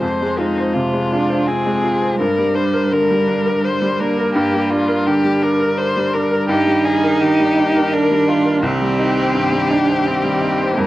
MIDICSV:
0, 0, Header, 1, 5, 480
1, 0, Start_track
1, 0, Tempo, 722892
1, 17, Time_signature, 3, 2, 24, 8
1, 2416, Tempo, 714286
1, 7274, End_track
2, 0, Start_track
2, 0, Title_t, "Violin"
2, 0, Program_c, 0, 40
2, 9, Note_on_c, 0, 72, 45
2, 258, Note_on_c, 0, 63, 44
2, 268, Note_off_c, 0, 72, 0
2, 491, Note_on_c, 0, 65, 43
2, 501, Note_off_c, 0, 63, 0
2, 976, Note_on_c, 0, 68, 51
2, 986, Note_off_c, 0, 65, 0
2, 1450, Note_off_c, 0, 68, 0
2, 1454, Note_on_c, 0, 70, 53
2, 1691, Note_on_c, 0, 72, 54
2, 1701, Note_off_c, 0, 70, 0
2, 1937, Note_on_c, 0, 70, 66
2, 1947, Note_off_c, 0, 72, 0
2, 2417, Note_on_c, 0, 72, 61
2, 2427, Note_off_c, 0, 70, 0
2, 2657, Note_on_c, 0, 70, 61
2, 2667, Note_off_c, 0, 72, 0
2, 2887, Note_off_c, 0, 70, 0
2, 2891, Note_on_c, 0, 67, 57
2, 3132, Note_on_c, 0, 65, 61
2, 3142, Note_off_c, 0, 67, 0
2, 3376, Note_on_c, 0, 67, 70
2, 3386, Note_off_c, 0, 65, 0
2, 3619, Note_on_c, 0, 70, 64
2, 3629, Note_off_c, 0, 67, 0
2, 3853, Note_on_c, 0, 72, 71
2, 3863, Note_off_c, 0, 70, 0
2, 4092, Note_on_c, 0, 70, 62
2, 4102, Note_off_c, 0, 72, 0
2, 4328, Note_off_c, 0, 70, 0
2, 4332, Note_on_c, 0, 67, 74
2, 4570, Note_on_c, 0, 68, 70
2, 4581, Note_off_c, 0, 67, 0
2, 4811, Note_on_c, 0, 67, 72
2, 4821, Note_off_c, 0, 68, 0
2, 5301, Note_on_c, 0, 70, 80
2, 5311, Note_off_c, 0, 67, 0
2, 5535, Note_on_c, 0, 65, 66
2, 5545, Note_off_c, 0, 70, 0
2, 5776, Note_on_c, 0, 67, 71
2, 5786, Note_off_c, 0, 65, 0
2, 7214, Note_on_c, 0, 70, 79
2, 7224, Note_off_c, 0, 67, 0
2, 7274, Note_off_c, 0, 70, 0
2, 7274, End_track
3, 0, Start_track
3, 0, Title_t, "Upright piano"
3, 0, Program_c, 1, 0
3, 0, Control_c, 1, 64, 127
3, 0, Note_on_c, 1, 72, 35
3, 13, Note_on_c, 1, 41, 45
3, 29, Control_c, 1, 64, 0
3, 88, Note_off_c, 1, 72, 0
3, 143, Note_on_c, 1, 56, 37
3, 150, Control_c, 1, 64, 127
3, 256, Note_on_c, 1, 65, 36
3, 332, Note_off_c, 1, 56, 0
3, 383, Note_on_c, 1, 72, 40
3, 449, Note_off_c, 1, 65, 0
3, 498, Note_on_c, 1, 48, 34
3, 573, Note_off_c, 1, 72, 0
3, 622, Note_on_c, 1, 56, 35
3, 691, Note_off_c, 1, 48, 0
3, 745, Note_on_c, 1, 65, 35
3, 813, Note_off_c, 1, 56, 0
3, 861, Note_on_c, 1, 72, 45
3, 935, Note_off_c, 1, 65, 0
3, 1105, Note_on_c, 1, 56, 40
3, 1220, Note_on_c, 1, 65, 37
3, 1245, Note_off_c, 1, 72, 0
3, 1294, Note_off_c, 1, 56, 0
3, 1342, Note_on_c, 1, 72, 40
3, 1411, Note_off_c, 1, 65, 0
3, 1431, Note_off_c, 1, 41, 0
3, 1460, Note_off_c, 1, 72, 0
3, 1460, Note_on_c, 1, 43, 51
3, 1471, Control_c, 1, 64, 0
3, 1581, Control_c, 1, 64, 127
3, 1582, Note_on_c, 1, 55, 43
3, 1693, Note_on_c, 1, 62, 38
3, 1772, Note_off_c, 1, 55, 0
3, 1815, Note_on_c, 1, 70, 45
3, 1887, Note_off_c, 1, 62, 0
3, 1942, Note_on_c, 1, 50, 36
3, 2009, Note_off_c, 1, 70, 0
3, 2062, Note_on_c, 1, 55, 41
3, 2132, Note_off_c, 1, 50, 0
3, 2173, Note_on_c, 1, 62, 45
3, 2252, Note_off_c, 1, 55, 0
3, 2295, Note_on_c, 1, 70, 44
3, 2366, Note_off_c, 1, 62, 0
3, 2534, Note_on_c, 1, 55, 48
3, 2659, Note_on_c, 1, 62, 40
3, 2680, Note_off_c, 1, 70, 0
3, 2728, Note_off_c, 1, 55, 0
3, 2779, Note_on_c, 1, 70, 50
3, 2850, Note_off_c, 1, 62, 0
3, 2871, Note_off_c, 1, 43, 0
3, 2896, Note_on_c, 1, 43, 66
3, 2910, Control_c, 1, 64, 0
3, 2970, Note_off_c, 1, 70, 0
3, 3015, Note_on_c, 1, 55, 49
3, 3027, Control_c, 1, 64, 127
3, 3140, Note_on_c, 1, 62, 44
3, 3208, Note_off_c, 1, 55, 0
3, 3252, Note_on_c, 1, 70, 53
3, 3331, Note_off_c, 1, 62, 0
3, 3377, Note_on_c, 1, 50, 44
3, 3446, Note_off_c, 1, 70, 0
3, 3495, Note_on_c, 1, 55, 49
3, 3568, Note_off_c, 1, 50, 0
3, 3615, Note_on_c, 1, 62, 49
3, 3686, Note_off_c, 1, 55, 0
3, 3735, Note_on_c, 1, 70, 52
3, 3806, Note_off_c, 1, 62, 0
3, 3979, Note_on_c, 1, 55, 50
3, 4101, Note_on_c, 1, 62, 51
3, 4115, Note_off_c, 1, 70, 0
3, 4166, Note_off_c, 1, 55, 0
3, 4212, Note_on_c, 1, 70, 48
3, 4287, Note_off_c, 1, 62, 0
3, 4302, Note_off_c, 1, 43, 0
3, 4331, Note_off_c, 1, 70, 0
3, 4332, Note_on_c, 1, 43, 70
3, 4342, Control_c, 1, 64, 0
3, 4449, Control_c, 1, 64, 127
3, 4452, Note_on_c, 1, 55, 51
3, 4571, Note_on_c, 1, 63, 53
3, 4644, Note_off_c, 1, 55, 0
3, 4697, Note_on_c, 1, 70, 57
3, 4763, Note_off_c, 1, 63, 0
3, 4823, Note_on_c, 1, 51, 51
3, 4886, Note_off_c, 1, 70, 0
3, 4940, Note_on_c, 1, 55, 54
3, 5009, Note_off_c, 1, 51, 0
3, 5061, Note_on_c, 1, 63, 55
3, 5128, Note_off_c, 1, 55, 0
3, 5184, Note_on_c, 1, 70, 56
3, 5249, Note_off_c, 1, 63, 0
3, 5417, Note_on_c, 1, 55, 57
3, 5532, Note_on_c, 1, 63, 52
3, 5563, Note_off_c, 1, 70, 0
3, 5607, Note_off_c, 1, 55, 0
3, 5650, Note_on_c, 1, 70, 55
3, 5725, Note_off_c, 1, 63, 0
3, 5747, Note_off_c, 1, 43, 0
3, 5766, Note_on_c, 1, 36, 72
3, 5772, Note_off_c, 1, 70, 0
3, 5784, Control_c, 1, 64, 0
3, 5883, Control_c, 1, 64, 127
3, 5894, Note_on_c, 1, 55, 55
3, 6013, Note_on_c, 1, 63, 55
3, 6086, Note_off_c, 1, 55, 0
3, 6134, Note_on_c, 1, 72, 53
3, 6205, Note_off_c, 1, 63, 0
3, 6248, Note_on_c, 1, 43, 50
3, 6325, Note_off_c, 1, 72, 0
3, 6368, Note_on_c, 1, 55, 54
3, 6442, Note_off_c, 1, 43, 0
3, 6491, Note_on_c, 1, 63, 54
3, 6563, Note_off_c, 1, 55, 0
3, 6607, Note_on_c, 1, 72, 58
3, 6685, Note_off_c, 1, 63, 0
3, 6853, Note_on_c, 1, 55, 55
3, 6968, Note_on_c, 1, 63, 44
3, 6998, Note_off_c, 1, 72, 0
3, 7048, Note_off_c, 1, 55, 0
3, 7099, Note_on_c, 1, 72, 52
3, 7166, Note_off_c, 1, 63, 0
3, 7188, Note_off_c, 1, 36, 0
3, 7212, Note_on_c, 1, 41, 61
3, 7220, Note_off_c, 1, 72, 0
3, 7230, Control_c, 1, 64, 0
3, 7274, Note_off_c, 1, 41, 0
3, 7274, End_track
4, 0, Start_track
4, 0, Title_t, "Ambient pad"
4, 0, Program_c, 2, 92
4, 0, Note_on_c, 2, 56, 55
4, 0, Note_on_c, 2, 60, 54
4, 0, Note_on_c, 2, 72, 50
4, 1432, Note_off_c, 2, 56, 0
4, 1433, Note_off_c, 2, 60, 0
4, 1433, Note_off_c, 2, 72, 0
4, 1450, Note_on_c, 2, 62, 64
4, 1453, Note_on_c, 2, 55, 55
4, 1455, Note_on_c, 2, 70, 53
4, 4308, Note_off_c, 2, 70, 0
4, 4316, Note_on_c, 2, 70, 64
4, 4318, Note_on_c, 2, 51, 60
4, 4320, Note_on_c, 2, 58, 63
4, 4326, Note_off_c, 2, 62, 0
4, 4327, Note_off_c, 2, 55, 0
4, 5739, Note_off_c, 2, 70, 0
4, 5776, Note_on_c, 2, 72, 67
4, 7187, Note_off_c, 2, 58, 0
4, 7210, Note_on_c, 2, 53, 64
4, 7211, Note_on_c, 2, 65, 65
4, 7213, Note_off_c, 2, 51, 0
4, 7274, Note_off_c, 2, 53, 0
4, 7274, Note_off_c, 2, 65, 0
4, 7274, Note_off_c, 2, 72, 0
4, 7274, End_track
5, 0, Start_track
5, 0, Title_t, "Cello"
5, 0, Program_c, 3, 42
5, 0, Note_on_c, 3, 56, 52
5, 497, Note_off_c, 3, 56, 0
5, 738, Note_on_c, 3, 62, 59
5, 975, Note_on_c, 3, 60, 59
5, 985, Note_off_c, 3, 62, 0
5, 1456, Note_off_c, 3, 60, 0
5, 1461, Note_on_c, 3, 55, 72
5, 2663, Note_on_c, 3, 58, 68
5, 2673, Note_off_c, 3, 55, 0
5, 3380, Note_off_c, 3, 58, 0
5, 4330, Note_on_c, 3, 63, 113
5, 5289, Note_on_c, 3, 62, 98
5, 5299, Note_off_c, 3, 63, 0
5, 5772, Note_off_c, 3, 62, 0
5, 5782, Note_on_c, 3, 60, 96
5, 6493, Note_on_c, 3, 62, 80
5, 6504, Note_off_c, 3, 60, 0
5, 6737, Note_on_c, 3, 60, 84
5, 6747, Note_off_c, 3, 62, 0
5, 7219, Note_on_c, 3, 55, 107
5, 7229, Note_off_c, 3, 60, 0
5, 7274, Note_off_c, 3, 55, 0
5, 7274, End_track
0, 0, End_of_file